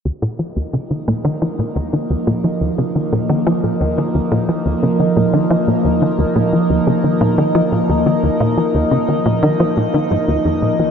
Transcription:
0.05 analog synth bass D#2, ambient pad F3 A#3 D#4 A#4 D#5
0.22 analog synth bass A#2
0.39 analog synth bass F3
0.56 analog synth bass D#2
0.73 analog synth bass C#3
0.91 analog synth bass D#3
1.08 analog synth bass A#2
1.25 analog synth bass D#3
1.42 analog synth bass F3
1.59 analog synth bass A#2
1.76 analog synth bass D#2
1.93 analog synth bass D#3
2.10 analog synth bass D#2
2.27 analog synth bass A#2
2.44 analog synth bass F3
2.61 analog synth bass D#2
2.78 analog synth bass C#3
2.95 analog synth bass D#3
3.12 analog synth bass A#2
3.29 analog synth bass D#3
3.47 analog synth bass F3
3.64 analog synth bass A#2
3.81 analog synth bass D#2
3.98 analog synth bass D#3
4.15 analog synth bass D#2
4.32 analog synth bass A#2
4.49 analog synth bass F3
4.66 analog synth bass D#2
4.83 analog synth bass C#3
5.00 analog synth bass D#3
5.16 analog synth bass A#2
5.33 analog synth bass D#3
5.50 analog synth bass F3
5.68 analog synth bass A#2
5.85 analog synth bass D#2
6.02 analog synth bass D#3
6.19 analog synth bass D#2
6.36 analog synth bass A#2
6.53 analog synth bass F3
6.70 analog synth bass D#2
6.87 analog synth bass C#3
7.04 analog synth bass D#3
7.21 analog synth bass A#2
7.38 analog synth bass D#3
7.55 analog synth bass F3
7.72 analog synth bass A#2
7.89 analog synth bass D#2
8.06 analog synth bass D#3
8.23 analog synth bass D#2
8.40 analog synth bass A#2
8.57 analog synth bass F3
8.75 analog synth bass D#2
8.91 analog synth bass C#3
9.08 analog synth bass D#3
9.26 analog synth bass A#2
9.43 analog synth bass D#3
9.60 analog synth bass F3
9.77 analog synth bass A#2
9.94 analog synth bass D#3
10.11 analog synth bass G#2
10.28 analog synth bass D#2
10.45 analog synth bass F2
10.62 analog synth bass A#2
10.79 analog synth bass F3

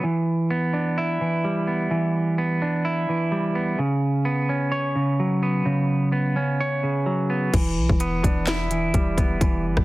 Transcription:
0.04 clean electric guitar E3
0.51 clean electric guitar B3
0.73 clean electric guitar D4
0.98 clean electric guitar E4
1.21 clean electric guitar E3
1.44 clean electric guitar G3
1.67 clean electric guitar B3
1.91 clean electric guitar E3
2.38 clean electric guitar B3
2.62 clean electric guitar D4
2.85 clean electric guitar E4
3.09 clean electric guitar E3
3.32 clean electric guitar G3
3.55 clean electric guitar B3
3.79 clean electric guitar C#3
4.25 clean electric guitar B3
4.49 clean electric guitar C#4
4.72 clean electric guitar C#5
4.96 clean electric guitar C#3
5.20 clean electric guitar F#3
5.43 clean electric guitar B3
5.66 clean electric guitar C#3
6.12 clean electric guitar B3
6.36 clean electric guitar C#4
6.60 clean electric guitar C#5
6.83 clean electric guitar C#3
7.06 clean electric guitar F#3
7.30 clean electric guitar B3
7.54 808-style bass E1, clean electric guitar E3, kick, closed hi-hat, crash
7.77 808-style bass B1
7.89 808-style bass E1, kick
8.00 clean electric guitar B3, closed hi-hat
8.23 808-style bass E1, clean electric guitar D4, kick, closed hi-hat
8.47 clean electric guitar E4, snare, clap, closed hi-hat
8.71 clean electric guitar E3, closed hi-hat
8.94 808-style bass E1, clean electric guitar G3, kick, closed hi-hat
9.17 808-style bass E1, clean electric guitar B3, kick, closed hi-hat
9.41 808-style bass E1, clean electric guitar E3, kick, closed hi-hat
9.64 808-style bass F#1
9.77 808-style bass E1, kick, cross-stick

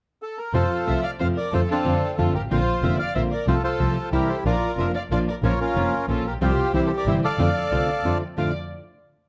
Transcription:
0.22 bandoneon A4
0.38 bandoneon A#4
0.53 double bass F2, nylon-string guitar C3 F3 A3 C4 F4, bandoneon F4 A4 C5, violin section A4
0.87 double bass C2, nylon-string guitar C3 F3 A3 C4 F4, violin section C5, bandoneon E5
1.03 violin section D5, bandoneon F5
1.19 double bass F2, nylon-string guitar C3 F3 A3 C4 F4, violin section C5, bandoneon F5
1.35 violin section A#4, bandoneon D5
1.51 double bass F2, nylon-string guitar D3 A3 C4 F4, violin section A4, bandoneon A4 C5
1.69 bandoneon C4 D4 A4, violin section F4
1.85 double bass F2, nylon-string guitar D3 A3 C4 F4
2.18 double bass F2, nylon-string guitar D3 A3 C4 F4, violin section F4, bandoneon A4
2.34 double bass G#1, violin section G4, bandoneon A#4
2.50 double bass A#1, nylon-string guitar D3 A#3 C4 F4, violin section F4, bandoneon F4 C5
2.82 double bass F1, nylon-string guitar D3 A#3 C4 F4, violin section C5, bandoneon E5
2.99 violin section D5, bandoneon F5
3.15 double bass A#1, nylon-string guitar D3 A#3 C4 F4, violin section C5, bandoneon E5
3.31 violin section A#4, bandoneon D5
3.47 double bass C2, nylon-string guitar C3 F3 A3 C4 F4, bandoneon F4 A4 C5, violin section A4
3.63 bandoneon F4 A4 C5, violin section A4
3.80 double bass C2, nylon-string guitar C3 F3 A3 C4 F4
4.12 double bass C2, nylon-string guitar C3 E3 G3 C4 E4, bandoneon E4 G4 A#4, violin section G4
4.29 violin section A4, bandoneon C5
4.45 double bass A#1, nylon-string guitar F3 A#3 D4 F4, bandoneon A#3 D4 F4 A#4 D5, violin section A#4
4.77 double bass F1, nylon-string guitar F3 A#3 D4 F4, bandoneon A#3 D4 F4 E5, violin section A#4
4.95 violin section D5, bandoneon F5
5.10 double bass A#1, nylon-string guitar F3 A#3 D4 F4, bandoneon A#3 D4 F4 F5, violin section D5
5.28 violin section A#4, bandoneon D5
5.43 double bass A#1, nylon-string guitar F3 A#3 C#4 F4, bandoneon A#3 C#4 F4 A#4 C#5, violin section A#4
5.61 bandoneon C#4 F4 A#4, violin section F4
5.75 double bass F1, nylon-string guitar F3 A#3 C#4 F4, bandoneon A#3 C#4 F4
6.07 double bass A#1, nylon-string guitar F3 A#3 C#4 F4, bandoneon A#3 C#4 F4 A4, violin section F4
6.24 double bass A#1, violin section G4, bandoneon A#4
6.40 double bass C2, nylon-string guitar C3 F3 G3 C4 F4, bandoneon G3 C4 F4 G4 C5
6.45 violin section G4
6.73 double bass C2, nylon-string guitar C3 E3 G3 C4 E4, bandoneon G3 C4 E4 G4 C5 E5, violin section C5
6.86 violin section A4, bandoneon C5
6.97 violin section A#4, bandoneon D5
7.05 double bass G1, nylon-string guitar C3 E3 G3 C4 E4, bandoneon G3 C4 E4 E5, violin section C5
7.24 bandoneon A4 D5 F5, violin section D5
7.38 double bass F2, nylon-string guitar D3 A3 C4 F4, bandoneon A3 D4 F4
7.71 double bass C2, nylon-string guitar D3 A3 C4 F4, bandoneon A3 D4 F4
8.03 double bass F2, nylon-string guitar D3 A3 C4 F4, bandoneon A3 D4 F4
8.37 nylon-string guitar F2 A2 D3 A3 C4 F4, double bass F2, bandoneon A3 D4 F4 F5, violin section D5

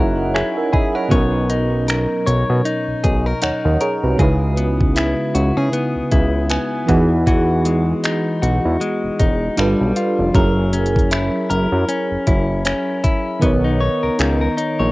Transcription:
Already playing: analog synth bass F#1, fm electric piano F#3 C#4 D#4 E4 G#4 A#4 C#5 D#5 E5 F#5, clean electric guitar F#3 E4 A#4 D#5
0.34 clean electric guitar E4, fm electric piano G#4 C#5 G#5, finger snap
0.57 fm electric piano A#4 E5
0.73 clean electric guitar G#4, fm electric piano D#5 G#5 B5, kick
0.95 clean electric guitar A#4, fm electric piano C#5 F#5
1.08 analog synth bass B1, fm electric piano B2 F#3 C#4, clean electric guitar B3 C#5, kick, closed hi-hat
1.13 fm electric piano D#4 A#4
1.50 clean electric guitar D#4, closed hi-hat
1.88 clean electric guitar A#4, finger snap, closed hi-hat
2.27 analog synth bass B1, clean electric guitar C#5, closed hi-hat
2.50 analog synth bass B2
2.65 clean electric guitar D#4, closed hi-hat
2.88 analog synth bass B1
3.04 analog synth bass B1, clean electric guitar G#4, kick, closed hi-hat
3.26 clean electric guitar A#4
3.42 analog synth bass D#2, clean electric guitar D#4, fm electric piano C#5 F#5, finger snap, closed hi-hat
3.65 analog synth bass D#2, fm electric piano A#4 D#5
3.81 fm electric piano G#4 C#5, clean electric guitar A#4, closed hi-hat
4.03 analog synth bass C2, fm electric piano F#4 B4
4.16 analog synth bass C#2, fm electric piano C#3 G#3 D#4, clean electric guitar C#3 G#4, kick, closed hi-hat
4.21 fm electric piano E4 B4
4.57 clean electric guitar B3, closed hi-hat
4.81 kick
4.96 clean electric guitar E4, finger snap, closed hi-hat
5.35 analog synth bass C#2, clean electric guitar F#4, closed hi-hat
5.57 analog synth bass C#3, clean electric guitar G#4
5.73 clean electric guitar B3, closed hi-hat
5.96 analog synth bass C#2
6.11 analog synth bass C#2, clean electric guitar E4, kick, closed hi-hat
6.49 clean electric guitar B3, fm electric piano G#5, finger snap, closed hi-hat
6.86 analog synth bass E2, fm electric piano E3 B3 D#4 F#5, clean electric guitar E3, kick, closed hi-hat
6.90 fm electric piano F#4 G#4
7.27 clean electric guitar E3 F#4, kick, closed hi-hat
7.65 clean electric guitar G#3, closed hi-hat
8.04 clean electric guitar D#4, finger snap, closed hi-hat
8.42 analog synth bass B1, clean electric guitar F#4, closed hi-hat
8.65 analog synth bass E2
8.81 clean electric guitar G#3, closed hi-hat
9.04 analog synth bass E1
9.19 analog synth bass E1, clean electric guitar D#4, kick, closed hi-hat
9.57 analog synth bass G1, fm electric piano G3 D4 F4 A4 B4, clean electric guitar G3, finger snap, closed hi-hat
9.81 analog synth bass B1
9.96 clean electric guitar F4, closed hi-hat
10.19 analog synth bass F1
10.32 analog synth bass F#1, fm electric piano F#3 C#4 E4, clean electric guitar F#3 A#4, kick, closed hi-hat
10.37 fm electric piano G#4 A#4
10.73 clean electric guitar C#4, closed hi-hat
10.86 closed hi-hat
10.96 kick, closed hi-hat
11.11 clean electric guitar E4, finger snap, closed hi-hat
11.50 analog synth bass F#1, clean electric guitar A#4, closed hi-hat
11.72 analog synth bass F#2
11.89 clean electric guitar C#4, closed hi-hat
12.11 analog synth bass F#1
12.27 analog synth bass F#1, clean electric guitar E4, kick, closed hi-hat
12.65 clean electric guitar C#4, finger snap, closed hi-hat
13.04 clean electric guitar E4, kick, closed hi-hat
13.39 analog synth bass B1, fm electric piano D#3 B3 D#4, clean electric guitar B3, kick, closed hi-hat
13.44 fm electric piano A#4 C#5
13.64 clean electric guitar D#4
13.80 clean electric guitar C#5
14.03 analog synth bass C#2, clean electric guitar A#4
14.19 analog synth bass C#2, clean electric guitar D#4, finger snap, closed hi-hat
14.41 clean electric guitar A#4
14.57 clean electric guitar D#4, closed hi-hat
14.80 analog synth bass A#1, clean electric guitar C#5

